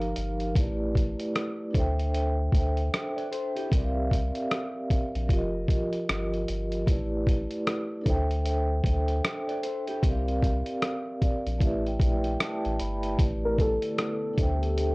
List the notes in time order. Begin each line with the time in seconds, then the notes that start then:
Already playing: G1 F3 D#4 G4 A#4 F5
0.02 closed hi-hat
0.16 G1, closed hi-hat
0.40 closed hi-hat
0.55 A1 A3 E4 G4 B4, kick, closed hi-hat
0.59 D5
0.95 kick, closed hi-hat
1.20 closed hi-hat
1.35 cross-stick, closed hi-hat
1.71 D4 A4, kick
1.75 D2 C5 E5, closed hi-hat
1.79 G5
2.00 closed hi-hat
2.15 closed hi-hat
2.52 D2, kick, closed hi-hat
2.77 closed hi-hat
2.94 cross-stick, closed hi-hat
3.16 B4 D5, closed hi-hat
3.31 A4 C5, closed hi-hat
3.56 E4 G4, closed hi-hat
3.69 C2 C4 G4, kick, closed hi-hat
3.73 A#4 D5
3.78 E5
3.84 F5
4.11 kick, closed hi-hat
4.35 closed hi-hat
4.51 cross-stick, closed hi-hat
4.90 kick, closed hi-hat
5.15 A#1, closed hi-hat
5.28 F1 F3 F4, kick, closed hi-hat
5.32 G4 A#4
5.36 D#5
5.68 kick, closed hi-hat
5.93 closed hi-hat
6.09 G1, cross-stick, closed hi-hat
6.34 closed hi-hat
6.48 G1, closed hi-hat
6.72 closed hi-hat
6.86 A1 A3 E4 G4 B4, kick, closed hi-hat
6.90 D5
7.27 kick, closed hi-hat
7.51 closed hi-hat
7.67 cross-stick, closed hi-hat
8.01 D4 A4
8.06 D2 C5 E5, kick, closed hi-hat
8.10 G5
8.31 closed hi-hat
8.46 closed hi-hat
8.84 D2, kick, closed hi-hat
9.08 closed hi-hat
9.24 cross-stick, closed hi-hat
9.48 B4 D5, closed hi-hat
9.63 A4 C5, closed hi-hat
9.87 E4 G4, closed hi-hat
10.02 C2 C4 G4, kick, closed hi-hat
10.06 A#4 D5
10.10 F5
10.28 closed hi-hat
10.42 kick, closed hi-hat
10.66 closed hi-hat
10.82 cross-stick, closed hi-hat
11.22 D5, kick, closed hi-hat
11.46 A#1, closed hi-hat
11.58 A1 A3 E4, kick, closed hi-hat
11.62 G4 B4 E5
11.66 D5
11.86 G5, closed hi-hat
12.00 A#1, kick, closed hi-hat
12.24 G5, closed hi-hat
12.40 A5, cross-stick, closed hi-hat
12.65 A1, closed hi-hat
12.80 G1 B5, closed hi-hat
13.03 closed hi-hat
13.18 A1 A3 E4 G4 B4, kick, closed hi-hat
13.22 D5
13.45 A#4
13.59 A4, kick, closed hi-hat
13.82 closed hi-hat
13.98 cross-stick, closed hi-hat
14.34 E3 C4 D4 A4
14.38 D2 C5 E5, kick, closed hi-hat
14.42 G5
14.63 closed hi-hat
14.78 closed hi-hat